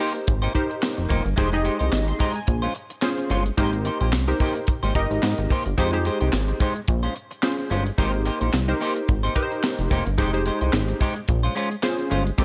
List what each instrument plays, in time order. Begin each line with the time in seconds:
Already playing: analog polysynth D#4 G4 A#4 C5
0.00 clean electric guitar A#3 D#4 G4 C5, open hi-hat
0.15 muted clean electric guitar stroke, closed hi-hat
0.27 analog synth bass G#1, muted clean electric guitar stroke, kick, closed hi-hat
0.42 clean electric guitar A#3 D#4 G4 C5, closed hi-hat
0.54 analog polysynth D#4 G4 A#4 C5, muted clean electric guitar stroke, kick, closed hi-hat
0.70 muted clean electric guitar stroke, closed hi-hat
0.82 muted clean electric guitar stroke, snare, clap, tambourine
0.97 analog synth bass F1, muted clean electric guitar stroke, closed hi-hat
1.09 analog synth bass F1, clean electric guitar A#3 D#4 G4 C5, kick, closed hi-hat
1.25 analog synth bass G1, muted clean electric guitar stroke, closed hi-hat
1.36 analog synth bass F1, clean electric guitar G#3 D#4 G4 C5, analog polysynth D#4 G4 G#4 C5, kick, closed hi-hat
1.52 analog polysynth D#4 G4 G#4 D#5, muted clean electric guitar stroke, closed hi-hat
1.64 clean electric guitar G#3 D#4 G4 C5, closed hi-hat
1.79 analog synth bass C2, clean electric guitar G#3 D#4 G4 C5, closed hi-hat
1.92 analog synth bass G#1, snare, clap, tambourine
2.07 analog polysynth C6, muted clean electric guitar stroke, closed hi-hat
2.19 clean electric guitar G#3 D#4 G4 C5, analog polysynth A#5, kick, open hi-hat
2.35 analog polysynth G#5, muted clean electric guitar stroke, closed hi-hat
2.47 analog synth bass A#1, muted clean electric guitar stroke, kick, closed hi-hat
2.62 clean electric guitar G#3 C#4 F4 C5, closed hi-hat
2.75 muted clean electric guitar stroke, closed hi-hat
2.90 muted clean electric guitar stroke, closed hi-hat
3.02 analog polysynth C#4 F4 G#4 C5, muted clean electric guitar stroke, snare, clap, tambourine
3.18 muted clean electric guitar stroke, closed hi-hat
3.29 analog synth bass G1, clean electric guitar G#3 C#4 F4 C5, closed hi-hat
3.46 muted clean electric guitar stroke, closed hi-hat
3.57 analog synth bass G#1, clean electric guitar A#3 D#4 G4 C5, analog polysynth D#4 G4 A#4 C5, kick, closed hi-hat
3.73 muted clean electric guitar stroke, closed hi-hat
3.85 clean electric guitar A#3 D#4 G4 C5, closed hi-hat
4.01 analog synth bass A#1, clean electric guitar A#3 D#4 G4 C5, closed hi-hat
4.12 analog synth bass C2, muted clean electric guitar stroke, snare, clap, tambourine
4.28 analog polysynth D#4 G4 A#4 C5, muted clean electric guitar stroke, closed hi-hat
4.40 clean electric guitar A#3 D#4 G4 C5, kick, open hi-hat
4.55 muted clean electric guitar stroke, closed hi-hat
4.67 muted clean electric guitar stroke, kick, closed hi-hat
4.83 analog synth bass G#1, clean electric guitar A#3 D#4 G4 C5, closed hi-hat
4.95 analog synth bass G1, analog polysynth D#4 G4 A#4 D#5, kick, closed hi-hat
5.11 analog synth bass G#1, muted clean electric guitar stroke, closed hi-hat
5.23 analog synth bass G#2, muted clean electric guitar stroke, snare, clap, tambourine
5.38 analog synth bass G#1, muted clean electric guitar stroke, closed hi-hat
5.50 clean electric guitar A#3 D#4 G4 C5, kick, open hi-hat
5.66 analog synth bass G1, muted clean electric guitar stroke, closed hi-hat
5.77 analog synth bass F2, clean electric guitar G#3 D#4 G4 C5, analog polysynth D#4 G4 G#4 C5, kick, closed hi-hat
5.93 analog polysynth D#4 G4 G#4 C5, muted clean electric guitar stroke, closed hi-hat
6.05 clean electric guitar G#3 D#4 G4 C5, closed hi-hat
6.20 analog synth bass C2, clean electric guitar G#3 D#4 G4 C5, closed hi-hat
6.33 analog synth bass G#1, muted clean electric guitar stroke, snare, clap, tambourine
6.48 muted clean electric guitar stroke, closed hi-hat
6.60 clean electric guitar G#3 D#4 G4 C5, kick, open hi-hat
6.76 muted clean electric guitar stroke, closed hi-hat
6.88 analog synth bass A#1, muted clean electric guitar stroke, kick, closed hi-hat
7.03 clean electric guitar G#3 C#4 F4 C5, closed hi-hat
7.15 muted clean electric guitar stroke, closed hi-hat
7.31 muted clean electric guitar stroke, closed hi-hat
7.43 analog polysynth C#4 F4 G#4 C5, muted clean electric guitar stroke, snare, clap, tambourine
7.58 muted clean electric guitar stroke, closed hi-hat
7.70 analog synth bass G1, clean electric guitar G#3 C#4 F4 C5, closed hi-hat
7.86 muted clean electric guitar stroke, closed hi-hat
7.98 analog synth bass G#1, clean electric guitar A#3 D#4 G4 C5, analog polysynth D#4 G4 A#4 C5, kick, closed hi-hat
8.14 muted clean electric guitar stroke, closed hi-hat
8.25 clean electric guitar A#3 D#4 G4 C5, closed hi-hat
8.41 analog synth bass A#1, clean electric guitar A#3 D#4 G4 C5, closed hi-hat
8.53 analog synth bass C2, muted clean electric guitar stroke, snare, clap, tambourine
8.68 analog polysynth D#4 G4 A#4 C5, muted clean electric guitar stroke, closed hi-hat
8.80 clean electric guitar A#3 D#4 G4 C5, open hi-hat
8.96 muted clean electric guitar stroke, closed hi-hat
9.08 analog synth bass G#1, muted clean electric guitar stroke, kick, closed hi-hat
9.23 clean electric guitar A#3 D#4 G4 C5, closed hi-hat
9.35 analog polysynth D#4 G4 A#4 B4, muted clean electric guitar stroke, kick, closed hi-hat
9.43 analog polysynth C5
9.51 muted clean electric guitar stroke, closed hi-hat
9.63 muted clean electric guitar stroke, snare, clap, tambourine
9.79 analog synth bass F1, muted clean electric guitar stroke, closed hi-hat
9.91 analog synth bass F1, clean electric guitar A#3 D#4 G4 C5, kick, closed hi-hat
10.06 analog synth bass G1, muted clean electric guitar stroke, closed hi-hat
10.18 analog synth bass F1, clean electric guitar G#3 D#4 G4 C5, analog polysynth D#4 G4 G#4 C5, kick, closed hi-hat
10.33 analog polysynth D#4 G4 G#4 C5, muted clean electric guitar stroke, closed hi-hat
10.46 clean electric guitar G#3 D#4 G4 C5, closed hi-hat
10.61 analog synth bass C2, clean electric guitar G#3 D#4 G4 C5, closed hi-hat
10.73 analog synth bass G#1, snare, clap, tambourine
10.88 muted clean electric guitar stroke, closed hi-hat
11.00 clean electric guitar G#3 D#4 G4 C5, kick, open hi-hat
11.16 muted clean electric guitar stroke, closed hi-hat
11.28 analog synth bass A#1, muted clean electric guitar stroke, kick, closed hi-hat
11.43 clean electric guitar G#3 C#4 F4 C5, closed hi-hat
11.55 clean electric guitar G#3 C#4 F4 C5, closed hi-hat
11.71 muted clean electric guitar stroke, closed hi-hat
11.83 analog polysynth C#4 F4 G#4 C5, muted clean electric guitar stroke, snare, clap, tambourine
11.98 muted clean electric guitar stroke, closed hi-hat
12.10 analog synth bass G1, clean electric guitar G#3 C#4 F4 C5, closed hi-hat
12.25 muted clean electric guitar stroke, closed hi-hat
12.38 analog synth bass G#1, clean electric guitar A#3 D#4 G4 C5, analog polysynth C4 D#4 G4 A4, kick, closed hi-hat